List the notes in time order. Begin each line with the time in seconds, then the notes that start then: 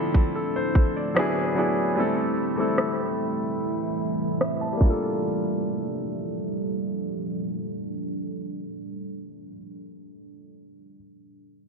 Already playing: D3 F3 A3 C4 D4 E4 A4
0.14 kick
0.35 A4
0.56 C5
0.75 kick
0.97 D5
1.15 E3 F#3 B3 D4 E4, cross-stick
1.19 G#4
1.55 F#3 B3 D4 E4
1.59 G#4
1.95 C3 G3 A3 C4 E4
2.00 A4
2.56 G3 A3 C4 E4
2.60 A4
2.78 cross-stick
4.41 E5, cross-stick
4.61 A5
4.73 G3
4.77 F3 G3 A#3 A4, kick, crash
4.81 A#2 D4
4.86 F4
4.90 A4